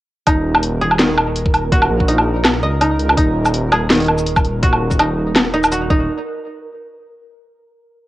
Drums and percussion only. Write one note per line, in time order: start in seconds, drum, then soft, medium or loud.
0.26 kick loud
0.26 closed hi-hat medium
0.26 low woodblock medium
0.55 low woodblock medium
0.63 closed hi-hat medium
0.91 low woodblock medium
0.99 snare loud
0.99 closed hi-hat medium
1.18 low woodblock medium
1.36 closed hi-hat medium
1.46 kick loud
1.54 closed hi-hat soft
1.54 low woodblock medium
1.72 kick loud
1.72 closed hi-hat medium
1.82 low woodblock medium
2.00 kick medium
2.08 closed hi-hat medium
2.18 low woodblock medium
2.45 snare loud
2.45 closed hi-hat medium
2.45 low woodblock medium
2.81 closed hi-hat medium
2.81 low woodblock medium
2.99 closed hi-hat soft
3.09 low woodblock medium
3.18 kick loud
3.18 closed hi-hat medium
3.46 low woodblock medium
3.46 shaker medium
3.54 closed hi-hat medium
3.72 low woodblock medium
3.90 snare loud
3.90 closed hi-hat medium
3.93 closed hi-hat medium
3.95 closed hi-hat soft
3.97 closed hi-hat soft
4.00 closed hi-hat soft
4.02 closed hi-hat soft
4.04 closed hi-hat soft
4.06 closed hi-hat soft
4.06 low woodblock medium
4.18 shaker medium
4.27 closed hi-hat medium
4.36 kick loud
4.36 low woodblock medium
4.36 shaker soft
4.45 closed hi-hat soft
4.63 kick loud
4.63 closed hi-hat medium
4.73 low woodblock medium
4.91 kick medium
4.91 shaker medium
4.99 closed hi-hat medium
4.99 low woodblock medium
5.36 snare loud
5.36 closed hi-hat medium
5.36 low woodblock soft
5.64 low woodblock medium
5.64 shaker medium
5.72 closed hi-hat medium
5.72 shaker medium
5.90 kick loud